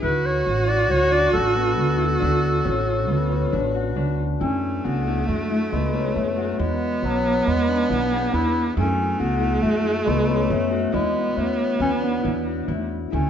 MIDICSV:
0, 0, Header, 1, 5, 480
1, 0, Start_track
1, 0, Key_signature, 3, "minor"
1, 0, Tempo, 436364
1, 45, Time_signature, 5, 2, 24, 8
1, 14629, End_track
2, 0, Start_track
2, 0, Title_t, "Harp"
2, 0, Program_c, 0, 46
2, 0, Note_on_c, 0, 59, 71
2, 0, Note_on_c, 0, 62, 60
2, 0, Note_on_c, 0, 68, 66
2, 22, Note_on_c, 0, 64, 81
2, 495, Note_on_c, 0, 66, 70
2, 730, Note_off_c, 0, 64, 0
2, 734, Note_on_c, 0, 64, 65
2, 977, Note_off_c, 0, 66, 0
2, 981, Note_on_c, 0, 66, 73
2, 1215, Note_off_c, 0, 62, 0
2, 1219, Note_on_c, 0, 62, 77
2, 1460, Note_on_c, 0, 57, 77
2, 1526, Note_off_c, 0, 68, 0
2, 1699, Note_off_c, 0, 59, 0
2, 1704, Note_on_c, 0, 59, 61
2, 2172, Note_off_c, 0, 64, 0
2, 2177, Note_on_c, 0, 64, 72
2, 2412, Note_off_c, 0, 62, 0
2, 2416, Note_on_c, 0, 62, 83
2, 2903, Note_on_c, 0, 61, 77
2, 2969, Note_off_c, 0, 62, 0
2, 3375, Note_off_c, 0, 59, 0
2, 3380, Note_on_c, 0, 59, 83
2, 3615, Note_off_c, 0, 61, 0
2, 3619, Note_on_c, 0, 61, 74
2, 3662, Note_off_c, 0, 66, 0
2, 3873, Note_on_c, 0, 62, 77
2, 3939, Note_off_c, 0, 61, 0
2, 4118, Note_on_c, 0, 66, 71
2, 4354, Note_off_c, 0, 62, 0
2, 4358, Note_on_c, 0, 62, 90
2, 4838, Note_off_c, 0, 64, 0
2, 4842, Note_on_c, 0, 64, 71
2, 5121, Note_off_c, 0, 57, 0
2, 5321, Note_off_c, 0, 66, 0
2, 5326, Note_on_c, 0, 66, 73
2, 5572, Note_off_c, 0, 64, 0
2, 5577, Note_on_c, 0, 64, 58
2, 5812, Note_off_c, 0, 66, 0
2, 5816, Note_on_c, 0, 66, 64
2, 6051, Note_off_c, 0, 64, 0
2, 6055, Note_on_c, 0, 64, 71
2, 6289, Note_off_c, 0, 59, 0
2, 6293, Note_on_c, 0, 59, 72
2, 6528, Note_on_c, 0, 61, 65
2, 6594, Note_off_c, 0, 62, 0
2, 6997, Note_off_c, 0, 66, 0
2, 7002, Note_on_c, 0, 66, 71
2, 7247, Note_off_c, 0, 64, 0
2, 7252, Note_on_c, 0, 64, 78
2, 7726, Note_off_c, 0, 61, 0
2, 7730, Note_on_c, 0, 61, 71
2, 8202, Note_off_c, 0, 59, 0
2, 8206, Note_on_c, 0, 59, 69
2, 8449, Note_on_c, 0, 62, 74
2, 8515, Note_off_c, 0, 61, 0
2, 8683, Note_off_c, 0, 64, 0
2, 8688, Note_on_c, 0, 64, 78
2, 8932, Note_on_c, 0, 68, 65
2, 9170, Note_off_c, 0, 64, 0
2, 9175, Note_on_c, 0, 64, 75
2, 9639, Note_off_c, 0, 64, 0
2, 9644, Note_on_c, 0, 64, 83
2, 9682, Note_off_c, 0, 66, 0
2, 10113, Note_on_c, 0, 66, 77
2, 10344, Note_off_c, 0, 64, 0
2, 10348, Note_on_c, 0, 64, 64
2, 10582, Note_off_c, 0, 66, 0
2, 10586, Note_on_c, 0, 66, 71
2, 10820, Note_off_c, 0, 64, 0
2, 10824, Note_on_c, 0, 64, 70
2, 11058, Note_off_c, 0, 59, 0
2, 11062, Note_on_c, 0, 59, 83
2, 11313, Note_on_c, 0, 61, 67
2, 11379, Note_off_c, 0, 62, 0
2, 11433, Note_off_c, 0, 68, 0
2, 11770, Note_off_c, 0, 66, 0
2, 11775, Note_on_c, 0, 66, 72
2, 12018, Note_off_c, 0, 64, 0
2, 12023, Note_on_c, 0, 64, 80
2, 12494, Note_off_c, 0, 61, 0
2, 12499, Note_on_c, 0, 61, 71
2, 12963, Note_off_c, 0, 59, 0
2, 12968, Note_on_c, 0, 59, 74
2, 13212, Note_on_c, 0, 62, 67
2, 13278, Note_off_c, 0, 61, 0
2, 13446, Note_off_c, 0, 64, 0
2, 13451, Note_on_c, 0, 64, 74
2, 13693, Note_off_c, 0, 66, 0
2, 13697, Note_on_c, 0, 66, 63
2, 13940, Note_off_c, 0, 64, 0
2, 13944, Note_on_c, 0, 64, 73
2, 14429, Note_off_c, 0, 64, 0
2, 14433, Note_on_c, 0, 64, 68
2, 14629, Note_off_c, 0, 59, 0
2, 14629, Note_off_c, 0, 62, 0
2, 14629, Note_off_c, 0, 64, 0
2, 14629, Note_off_c, 0, 66, 0
2, 14629, End_track
3, 0, Start_track
3, 0, Title_t, "Clarinet"
3, 0, Program_c, 1, 71
3, 37, Note_on_c, 1, 71, 96
3, 283, Note_on_c, 1, 73, 86
3, 300, Note_off_c, 1, 71, 0
3, 745, Note_on_c, 1, 74, 96
3, 762, Note_off_c, 1, 73, 0
3, 989, Note_on_c, 1, 73, 111
3, 1005, Note_off_c, 1, 74, 0
3, 1232, Note_on_c, 1, 74, 107
3, 1248, Note_off_c, 1, 73, 0
3, 1454, Note_off_c, 1, 74, 0
3, 1460, Note_on_c, 1, 69, 86
3, 4315, Note_off_c, 1, 69, 0
3, 4842, Note_on_c, 1, 61, 84
3, 5331, Note_on_c, 1, 59, 76
3, 5348, Note_off_c, 1, 61, 0
3, 5804, Note_on_c, 1, 57, 84
3, 5821, Note_off_c, 1, 59, 0
3, 6044, Note_off_c, 1, 57, 0
3, 6050, Note_on_c, 1, 57, 80
3, 6288, Note_on_c, 1, 56, 73
3, 6304, Note_off_c, 1, 57, 0
3, 6766, Note_on_c, 1, 57, 72
3, 6782, Note_off_c, 1, 56, 0
3, 7248, Note_on_c, 1, 56, 81
3, 7264, Note_off_c, 1, 57, 0
3, 7750, Note_on_c, 1, 54, 82
3, 7767, Note_off_c, 1, 56, 0
3, 8223, Note_on_c, 1, 56, 91
3, 8240, Note_off_c, 1, 54, 0
3, 8687, Note_on_c, 1, 59, 88
3, 8703, Note_off_c, 1, 56, 0
3, 9170, Note_on_c, 1, 64, 93
3, 9187, Note_off_c, 1, 59, 0
3, 9527, Note_off_c, 1, 64, 0
3, 9641, Note_on_c, 1, 61, 86
3, 10084, Note_off_c, 1, 61, 0
3, 10119, Note_on_c, 1, 59, 86
3, 10591, Note_on_c, 1, 57, 101
3, 10607, Note_off_c, 1, 59, 0
3, 11062, Note_on_c, 1, 56, 85
3, 11079, Note_off_c, 1, 57, 0
3, 11305, Note_off_c, 1, 56, 0
3, 11319, Note_on_c, 1, 56, 81
3, 11564, Note_on_c, 1, 57, 85
3, 11581, Note_off_c, 1, 56, 0
3, 12031, Note_on_c, 1, 56, 95
3, 12047, Note_off_c, 1, 57, 0
3, 12504, Note_on_c, 1, 57, 76
3, 12521, Note_off_c, 1, 56, 0
3, 12983, Note_off_c, 1, 57, 0
3, 12996, Note_on_c, 1, 61, 90
3, 13101, Note_off_c, 1, 61, 0
3, 13234, Note_on_c, 1, 59, 74
3, 13627, Note_off_c, 1, 59, 0
3, 13956, Note_on_c, 1, 57, 64
3, 14296, Note_off_c, 1, 57, 0
3, 14439, Note_on_c, 1, 61, 78
3, 14629, Note_off_c, 1, 61, 0
3, 14629, End_track
4, 0, Start_track
4, 0, Title_t, "Viola"
4, 0, Program_c, 2, 41
4, 47, Note_on_c, 2, 66, 103
4, 4611, Note_off_c, 2, 66, 0
4, 4853, Note_on_c, 2, 57, 91
4, 7262, Note_on_c, 2, 59, 106
4, 7279, Note_off_c, 2, 57, 0
4, 9649, Note_off_c, 2, 59, 0
4, 9653, Note_on_c, 2, 57, 105
4, 12013, Note_on_c, 2, 59, 85
4, 12029, Note_off_c, 2, 57, 0
4, 14192, Note_off_c, 2, 59, 0
4, 14424, Note_on_c, 2, 57, 99
4, 14629, Note_off_c, 2, 57, 0
4, 14629, End_track
5, 0, Start_track
5, 0, Title_t, "Upright bass"
5, 0, Program_c, 3, 32
5, 32, Note_on_c, 3, 38, 84
5, 441, Note_off_c, 3, 38, 0
5, 514, Note_on_c, 3, 33, 79
5, 996, Note_off_c, 3, 33, 0
5, 996, Note_on_c, 3, 38, 94
5, 1403, Note_off_c, 3, 38, 0
5, 1481, Note_on_c, 3, 33, 87
5, 1963, Note_off_c, 3, 33, 0
5, 1963, Note_on_c, 3, 38, 87
5, 2367, Note_off_c, 3, 38, 0
5, 2444, Note_on_c, 3, 38, 93
5, 2847, Note_off_c, 3, 38, 0
5, 2921, Note_on_c, 3, 33, 89
5, 3403, Note_off_c, 3, 33, 0
5, 3403, Note_on_c, 3, 38, 83
5, 3811, Note_off_c, 3, 38, 0
5, 3883, Note_on_c, 3, 33, 86
5, 4371, Note_off_c, 3, 33, 0
5, 4371, Note_on_c, 3, 38, 95
5, 4783, Note_off_c, 3, 38, 0
5, 4850, Note_on_c, 3, 42, 86
5, 5263, Note_off_c, 3, 42, 0
5, 5336, Note_on_c, 3, 37, 79
5, 5745, Note_off_c, 3, 37, 0
5, 5816, Note_on_c, 3, 42, 79
5, 6224, Note_off_c, 3, 42, 0
5, 6297, Note_on_c, 3, 37, 78
5, 6705, Note_off_c, 3, 37, 0
5, 6775, Note_on_c, 3, 42, 82
5, 7184, Note_off_c, 3, 42, 0
5, 7254, Note_on_c, 3, 40, 96
5, 7663, Note_off_c, 3, 40, 0
5, 7730, Note_on_c, 3, 35, 70
5, 8139, Note_off_c, 3, 35, 0
5, 8219, Note_on_c, 3, 40, 79
5, 8623, Note_off_c, 3, 40, 0
5, 8691, Note_on_c, 3, 35, 86
5, 9098, Note_off_c, 3, 35, 0
5, 9168, Note_on_c, 3, 40, 77
5, 9574, Note_off_c, 3, 40, 0
5, 9646, Note_on_c, 3, 42, 96
5, 10049, Note_off_c, 3, 42, 0
5, 10125, Note_on_c, 3, 37, 79
5, 10527, Note_off_c, 3, 37, 0
5, 10595, Note_on_c, 3, 42, 88
5, 11001, Note_off_c, 3, 42, 0
5, 11082, Note_on_c, 3, 37, 92
5, 11482, Note_off_c, 3, 37, 0
5, 11552, Note_on_c, 3, 42, 88
5, 11955, Note_off_c, 3, 42, 0
5, 12032, Note_on_c, 3, 40, 89
5, 12435, Note_off_c, 3, 40, 0
5, 12506, Note_on_c, 3, 40, 68
5, 12912, Note_off_c, 3, 40, 0
5, 12979, Note_on_c, 3, 40, 88
5, 13391, Note_off_c, 3, 40, 0
5, 13473, Note_on_c, 3, 40, 87
5, 13884, Note_off_c, 3, 40, 0
5, 13950, Note_on_c, 3, 40, 83
5, 14368, Note_off_c, 3, 40, 0
5, 14443, Note_on_c, 3, 38, 89
5, 14629, Note_off_c, 3, 38, 0
5, 14629, End_track
0, 0, End_of_file